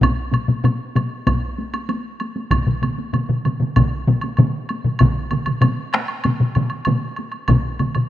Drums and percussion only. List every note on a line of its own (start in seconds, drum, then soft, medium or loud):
0.01 taiko medium
0.01 taiko low-mid loud
0.01 taiko high medium
0.01 high woodblock medium
0.32 taiko low-mid medium
0.32 taiko high medium
0.32 high woodblock soft
0.48 taiko low-mid medium
0.48 taiko high medium
0.64 taiko low-mid medium
0.64 taiko high medium
0.64 high woodblock soft
0.96 taiko low-mid medium
0.96 taiko high medium
0.96 high woodblock soft
1.27 taiko medium
1.27 taiko low-mid medium
1.27 taiko high medium
1.27 high woodblock medium
1.58 taiko high medium
1.74 taiko high medium
1.74 high woodblock soft
1.89 taiko high medium
1.89 high woodblock soft
2.20 taiko high medium
2.20 high woodblock soft
2.36 taiko high medium
2.51 taiko medium
2.51 taiko low-mid medium
2.51 taiko mid medium
2.51 taiko high medium
2.51 high woodblock medium
2.67 taiko low-mid medium
2.67 taiko mid medium
2.82 taiko low-mid medium
2.82 taiko mid medium
2.82 taiko high medium
2.82 high woodblock soft
2.98 taiko high medium
3.13 taiko low-mid medium
3.13 taiko mid medium
3.13 taiko high medium
3.13 high woodblock soft
3.29 taiko low-mid medium
3.29 taiko mid medium
3.45 taiko low-mid medium
3.45 taiko mid medium
3.45 taiko high medium
3.45 high woodblock soft
3.60 taiko low-mid medium
3.60 taiko mid medium
3.60 taiko high soft
3.76 taiko medium
3.76 taiko low-mid medium
3.76 taiko mid loud
3.76 taiko high medium
3.76 high woodblock medium
4.08 taiko low-mid loud
4.08 taiko mid loud
4.08 taiko high medium
4.21 taiko high medium
4.21 high woodblock soft
4.37 taiko low-mid loud
4.37 taiko mid medium
4.37 taiko high medium
4.37 high woodblock soft
4.69 taiko high medium
4.69 high woodblock soft
4.84 taiko low-mid medium
4.84 taiko mid medium
4.99 taiko medium
4.99 taiko low-mid loud
4.99 taiko mid loud
4.99 taiko high medium
4.99 high woodblock medium
5.17 taiko high soft
5.31 taiko low-mid medium
5.31 taiko mid medium
5.31 taiko high medium
5.31 high woodblock soft
5.46 taiko low-mid medium
5.46 taiko mid medium
5.46 taiko high soft
5.46 high woodblock soft
5.62 taiko low-mid loud
5.62 taiko mid medium
5.62 taiko high medium
5.62 high woodblock medium
5.79 taiko high soft
5.93 taiko rim medium
5.93 taiko high soft
5.93 high woodblock soft
6.08 taiko high soft
6.08 high woodblock soft
6.24 taiko low-mid medium
6.24 taiko mid medium
6.24 taiko high medium
6.24 high woodblock medium
6.40 taiko low-mid medium
6.40 taiko mid medium
6.40 taiko high soft
6.55 taiko low-mid loud
6.55 taiko mid loud
6.55 taiko high medium
6.55 high woodblock soft
6.70 taiko high soft
6.70 high woodblock soft
6.85 taiko low-mid medium
6.85 taiko mid medium
6.85 taiko high medium
6.85 high woodblock medium
7.16 taiko high medium
7.16 high woodblock soft
7.32 taiko high soft
7.32 high woodblock soft
7.48 taiko medium
7.48 taiko low-mid loud
7.48 taiko mid medium
7.48 taiko high medium
7.48 high woodblock medium
7.65 taiko high soft
7.79 taiko low-mid medium
7.79 taiko mid medium
7.79 taiko high medium
7.79 high woodblock soft
7.95 taiko low-mid medium
7.95 taiko mid medium
7.95 taiko high soft
7.95 high woodblock soft